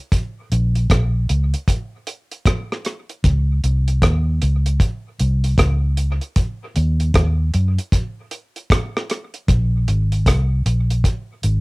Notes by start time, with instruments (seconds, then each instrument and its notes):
0.12 kick, closed hi-hat
0.52 fingered electric bass A#1, closed hi-hat
0.75 closed hi-hat
0.90 fingered electric bass A#1, kick, cross-stick, closed hi-hat
1.29 fingered electric bass C#2, closed hi-hat
1.54 closed hi-hat
1.68 kick, closed hi-hat
2.07 closed hi-hat
2.31 closed hi-hat
2.46 kick, cross-stick, closed hi-hat
2.72 cross-stick
2.85 cross-stick, closed hi-hat
3.09 closed hi-hat
3.24 fingered electric bass C#2, kick, closed hi-hat
3.64 fingered electric bass C2, closed hi-hat
3.88 closed hi-hat
4.02 fingered electric bass D#2, kick, cross-stick, closed hi-hat
4.42 fingered electric bass C#2, closed hi-hat
4.66 closed hi-hat
4.80 kick, closed hi-hat
5.19 fingered electric bass C2, closed hi-hat
5.44 closed hi-hat
5.58 fingered electric bass C#2, kick, cross-stick, closed hi-hat
5.97 closed hi-hat
6.21 closed hi-hat
6.36 kick, closed hi-hat
6.76 fingered electric bass D#2, closed hi-hat
7.00 closed hi-hat
7.14 fingered electric bass D#2, kick, cross-stick, closed hi-hat
7.54 fingered electric bass F#2, closed hi-hat
7.78 closed hi-hat
7.92 kick, closed hi-hat
8.31 closed hi-hat
8.56 closed hi-hat
8.70 kick, cross-stick, closed hi-hat
8.97 cross-stick
9.10 cross-stick, closed hi-hat
9.34 closed hi-hat
9.48 fingered electric bass A#1, kick, closed hi-hat
9.88 fingered electric bass G#1, closed hi-hat
10.12 closed hi-hat
10.26 fingered electric bass C2, kick, cross-stick, closed hi-hat
10.66 fingered electric bass A#1, closed hi-hat
10.90 closed hi-hat
11.04 kick, closed hi-hat
11.43 fingered electric bass G#1, closed hi-hat